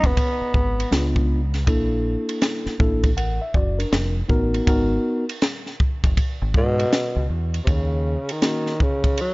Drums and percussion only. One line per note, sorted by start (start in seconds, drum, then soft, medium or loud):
0.04 kick medium
0.04 ride medium
0.17 kick medium
0.17 ride medium
0.54 kick medium
0.80 ride medium
0.92 snare loud
0.92 hi-hat pedal soft
0.92 ride medium
1.16 kick medium
1.54 snare soft
1.54 ride medium
1.67 kick loud
1.67 ride medium
2.29 ride medium
2.42 snare loud
2.42 hi-hat pedal medium
2.42 ride medium
2.66 snare soft
2.80 kick loud
3.03 kick medium
3.03 ride medium
3.17 ride medium
3.54 kick medium
3.80 ride medium
3.93 snare loud
3.93 hi-hat pedal soft
3.93 ride medium
4.29 kick medium
4.54 ride medium
4.67 kick loud
4.67 ride medium
5.29 ride medium
5.42 snare loud
5.42 hi-hat pedal medium
5.42 ride medium
5.66 snare soft
5.80 kick medium
6.04 kick medium
6.04 ride medium
6.17 kick medium
6.17 ride medium
6.54 kick medium
6.79 ride medium
6.93 snare loud
6.93 hi-hat pedal medium
6.93 ride medium
7.54 ride medium
7.67 kick medium
7.67 ride medium
8.29 ride medium
8.42 snare loud
8.42 hi-hat pedal medium
8.42 ride medium
8.66 snare soft
8.80 kick medium
9.04 kick medium
9.04 ride medium
9.18 ride medium